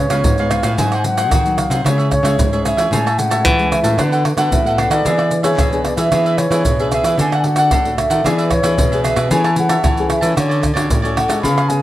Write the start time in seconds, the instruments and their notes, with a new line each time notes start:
Already playing: nylon-string guitar C#3, flute C#5
0.00 muted cavaquinho stroke
0.10 nylon-string guitar C#3 G#3 B3 F4, cavaquinho B4 C#5 F5, pandeiro, tamborim, maracas
0.24 nylon-string guitar G#2, pandeiro, maracas, surdo
0.38 nylon-string guitar G#3 B3 F4, cavaquinho B4 C#5 F5, pandeiro, maracas
0.51 cavaquinho F4 B4 C#5 F5, flute F5, pandeiro, tamborim, maracas
0.63 nylon-string guitar A2, cavaquinho B4 C#5 F5, pandeiro, tamborim, maracas
0.78 nylon-string guitar G#2 F#3 C4 D#4, cavaquinho F#4 G#4 C5 F#5, flute G#5, pandeiro, maracas, surdo
0.92 cavaquinho G#4 C5 F#5, pandeiro, tamborim, maracas
0.98 flute G#5
1.04 nylon-string guitar F#3 C4 D#4, flute F#5, muted cavaquinho stroke, pandeiro, maracas
1.17 cavaquinho G#4 C5 F#5, pandeiro, tamborim, maracas
1.31 nylon-string guitar D#3, cavaquinho F#4 G#4 C5 F#5, pandeiro, tamborim, maracas, surdo
1.45 nylon-string guitar F#3 C4 D#4, pandeiro, maracas
1.57 flute F5, pandeiro, tamborim, maracas
1.70 nylon-string guitar C3, cavaquinho G#4 C5 F#5, pandeiro, maracas
1.85 nylon-string guitar C#3 G#3 C#4 E4, cavaquinho E4 G#4 C#5 E5, flute C#5, pandeiro, tamborim, maracas, surdo
1.98 cavaquinho G#4 C#5 E5, pandeiro, maracas
2.11 flute C#5, muted cavaquinho stroke, pandeiro, tamborim, maracas, surdo
2.23 nylon-string guitar C#3 G#3 C#4 E4, cavaquinho G#4 C#5 E5, pandeiro, tamborim, maracas
2.39 nylon-string guitar G#2, pandeiro, maracas, surdo
2.52 nylon-string guitar G#3 C#4 E4, cavaquinho G#4 C#5 E5, pandeiro, maracas
2.65 cavaquinho E4 G#4 C#5 E5, flute E5, pandeiro, tamborim, maracas
2.77 nylon-string guitar E3, cavaquinho G#4 C#5 E5, pandeiro, tamborim, maracas
2.91 nylon-string guitar A2 G#3 C#4 E4, cavaquinho G#4 C#5 E5 A5, flute G#5, pandeiro, maracas, surdo
3.06 cavaquinho C#5 E5 A5, pandeiro, tamborim, maracas
3.18 nylon-string guitar G#3 C#4 E4, flute F#5, muted cavaquinho stroke, pandeiro, maracas
3.30 cavaquinho C#5 E5 A5, pandeiro, tamborim, maracas
3.45 nylon-string guitar E3, cavaquinho C#5 E5 A5, pandeiro, tamborim, maracas, surdo
3.58 nylon-string guitar G#3 C#4 E4, pandeiro, maracas
3.72 flute E5, pandeiro, tamborim, maracas
3.84 nylon-string guitar A2, cavaquinho C#5 E5 A5, pandeiro, maracas
3.98 nylon-string guitar D3 A3 B3 F#4, cavaquinho D4 A4 B4 F#5, flute B4, pandeiro, tamborim, maracas, surdo
4.12 cavaquinho A4 B4 F#5, pandeiro, maracas
4.25 muted cavaquinho stroke, pandeiro, tamborim
4.37 nylon-string guitar D3 A3 B3 F#4, cavaquinho A4 B4 F#5, pandeiro, tamborim, maracas
4.51 nylon-string guitar A2, flute E5, pandeiro, maracas, surdo
4.64 nylon-string guitar A3 B3 F#4, cavaquinho B4 F#5, pandeiro, maracas
4.68 cavaquinho A4
4.77 cavaquinho D4 A4 B4 F#5, flute F#5, pandeiro, tamborim
4.90 nylon-string guitar D#3, cavaquinho A4 B4 F#5, flute D5, pandeiro, tamborim, maracas
5.04 nylon-string guitar E3 B3 D4 G#4, cavaquinho D4 G#4 B4 E5, pandeiro, maracas, surdo
5.17 cavaquinho G#4 B4 E5, pandeiro, tamborim, maracas
5.31 muted cavaquinho stroke, pandeiro, maracas
5.43 nylon-string guitar B3 D4 G#4, cavaquinho G#4 B4 E5, flute C#5, pandeiro, tamborim, maracas
5.58 nylon-string guitar B2, cavaquinho D4 G#4 B4 E5, pandeiro, tamborim, maracas, surdo
5.72 nylon-string guitar B3 D4 G#4, pandeiro, maracas
5.85 flute D5, pandeiro, tamborim
5.96 nylon-string guitar E3 B3 D4 G#4, cavaquinho G#4 B4 E5, flute E5, pandeiro, maracas
6.12 nylon-string guitar E3 B3 D4 G#4, cavaquinho D4 G#4 B4 E5, pandeiro, tamborim, maracas, surdo
6.26 cavaquinho G#4 B4 E5, pandeiro, maracas
6.38 flute C#5, muted cavaquinho stroke, pandeiro, tamborim, maracas
6.51 nylon-string guitar E3 B3 D4 G#4, cavaquinho G#4 B4 E5, pandeiro, tamborim, maracas
6.65 nylon-string guitar B2, pandeiro, maracas, surdo
6.79 nylon-string guitar B3 D4 G#4, cavaquinho G#4 B4 E5, pandeiro, maracas
6.92 cavaquinho D4 G#4 B4 E5, flute E5, pandeiro, tamborim, maracas
7.03 nylon-string guitar E3, cavaquinho G#4 B4 E5, pandeiro, tamborim, maracas
7.19 nylon-string guitar D3 A3 D4 F#4, cavaquinho D4 A4 D5 F#5, flute G#5, pandeiro, maracas, surdo
7.32 cavaquinho A4 D5 F#5, pandeiro, tamborim, maracas
7.39 flute G#5
7.44 nylon-string guitar A3 D4 F#4, flute F#5, muted cavaquinho stroke, pandeiro
7.56 cavaquinho A4 D5 F#5, pandeiro, tamborim, maracas
7.71 nylon-string guitar A2, cavaquinho D4 A4 D5 F#5, pandeiro, tamborim, maracas, surdo
7.85 nylon-string guitar A3 D4 F#4, pandeiro, maracas
7.98 flute E5, pandeiro, tamborim, maracas
8.10 nylon-string guitar D#3, cavaquinho A4 D5 F#5, pandeiro, maracas
8.25 nylon-string guitar E3 B3 D4 G#4, cavaquinho D4 G#4 B4 E5, flute D5, pandeiro, tamborim, maracas, surdo
8.38 cavaquinho G#4 B4 E5, pandeiro, maracas
8.51 flute C#5, muted cavaquinho stroke, pandeiro, tamborim, maracas, surdo
8.63 nylon-string guitar E3 B3 D4 G#4, cavaquinho G#4 B4 E5, pandeiro, tamborim, maracas
8.78 nylon-string guitar B2, pandeiro, maracas, surdo
8.92 nylon-string guitar B3 D4 G#4, cavaquinho G#4 B4 E5, pandeiro, maracas
9.04 cavaquinho D4 G#4 B4 E5, flute E5, pandeiro, tamborim, maracas
9.16 nylon-string guitar B2, cavaquinho G#4 B4 E5, pandeiro, tamborim, maracas
9.31 nylon-string guitar E3 A3 C#4 G#4, cavaquinho G#4 C#5 E5 A5, flute G#5, pandeiro, maracas, surdo
9.44 cavaquinho C#5 E5 A5, pandeiro, tamborim, maracas
9.56 nylon-string guitar A3 C#4 G#4, flute F#5, muted cavaquinho stroke, pandeiro, maracas
9.69 cavaquinho C#5 E5 A5, pandeiro, tamborim, maracas
9.84 nylon-string guitar E3, cavaquinho C#5 E5 A5, pandeiro, tamborim, maracas, surdo
9.97 nylon-string guitar A3 C#4 G#4, pandeiro, maracas
10.10 flute E5, pandeiro, tamborim, maracas
10.21 nylon-string guitar E3 A3 C#4 F#4, cavaquinho C#5 E5 A5, pandeiro, maracas
10.36 nylon-string guitar D3, cavaquinho F#4 A4 C#5 D5, flute C#5, pandeiro, tamborim, maracas, surdo
10.49 cavaquinho A4 C#5 D5, pandeiro, maracas
10.61 muted cavaquinho stroke, pandeiro, tamborim, maracas, surdo
10.74 nylon-string guitar D3 A3 C#4 F#4, cavaquinho A4 C#5 D5, pandeiro, tamborim, maracas
10.90 nylon-string guitar A2, pandeiro, maracas, surdo
11.02 nylon-string guitar A3 C#4 F#4, cavaquinho A4 C#5 D5, pandeiro, maracas
11.16 cavaquinho F#4 A4 C#5 D5, flute F#5, pandeiro, tamborim
11.28 nylon-string guitar G#3, cavaquinho A4 C#5 D5, pandeiro, tamborim, maracas
11.43 nylon-string guitar C#3 B3 F4 G#4, cavaquinho F4 B4 C#5 F5, flute B5, pandeiro, maracas, surdo
11.57 cavaquinho B4 C#5 F5, pandeiro, tamborim, maracas
11.69 nylon-string guitar B3 F4 G#4, flute G#5, muted cavaquinho stroke, pandeiro, maracas